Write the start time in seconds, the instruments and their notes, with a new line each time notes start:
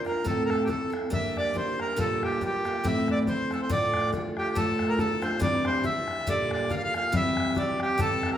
0.05 steel-string acoustic guitar D4 F4 A#4, accordion A#4, bodhran
0.24 steel-string acoustic guitar A2 A3 C4 E4 A4, accordion A4, bodhran
0.46 accordion A4 A#4
0.50 bodhran
0.64 steel-string acoustic guitar A3 C4, accordion G4
0.69 steel-string acoustic guitar E4 A4, accordion A4, bodhran
0.90 steel-string acoustic guitar C4 E4 A4, bodhran
1.10 steel-string acoustic guitar G3 A#3 D4 G4, accordion E5, bodhran
1.37 accordion D5, bodhran
1.53 steel-string acoustic guitar G3 A#3 D4 G4, accordion C5, bodhran
1.80 accordion A#4, bodhran
1.96 steel-string acoustic guitar A#2 D3 G3 A#3 F4, accordion A4, bodhran
2.23 accordion G4, bodhran
2.41 steel-string acoustic guitar D3 G3 A#3 F4, accordion G4, bodhran
2.65 steel-string acoustic guitar G3 A#3 F4, bodhran
2.84 steel-string acoustic guitar A2 E3 A3 C4 E4, accordion E5, bodhran
3.08 accordion D5, bodhran
3.27 steel-string acoustic guitar E3 A3 C4 E4, accordion C5, bodhran
3.51 steel-string acoustic guitar A3 C4 E4, accordion A4, bodhran
3.62 accordion C5
3.69 steel-string acoustic guitar D2 A2 D3 A3 D4 F4, accordion D5, bodhran
3.94 bodhran
4.13 steel-string acoustic guitar D3 A3 D4 F4, bodhran
4.37 accordion G4, bodhran
4.55 steel-string acoustic guitar D2 A2 D3 A3 D4 F4, accordion A4, bodhran
4.79 bodhran
4.89 accordion A#4
4.98 steel-string acoustic guitar D3 A3 D4 F4, accordion A4, bodhran
5.22 steel-string acoustic guitar D3 A3 D4 F4, accordion C5, bodhran
5.40 steel-string acoustic guitar C3 E3 G3 D4 E4, accordion D5, bodhran
5.65 accordion C5, bodhran
5.84 steel-string acoustic guitar E3 G3 D4 E4, accordion E5, bodhran
6.08 bodhran
6.27 steel-string acoustic guitar A#2 D3 G3 A#3 F4, accordion D5, bodhran
6.51 accordion D5, bodhran
6.70 steel-string acoustic guitar D3 G3 A#3 F4, accordion F5, bodhran
6.77 accordion F5
6.84 accordion F5
6.94 steel-string acoustic guitar G3 A#3 F4, accordion F5, bodhran
7.12 steel-string acoustic guitar C3 E3 G3 C4 G4, accordion E5, bodhran
7.37 bodhran
7.55 steel-string acoustic guitar E3 G3 C4 G4, accordion D5, bodhran
7.80 accordion G4, bodhran
7.98 steel-string acoustic guitar C3 E3 G3 C4 G4, accordion A4, bodhran
8.23 bodhran
8.34 accordion A#4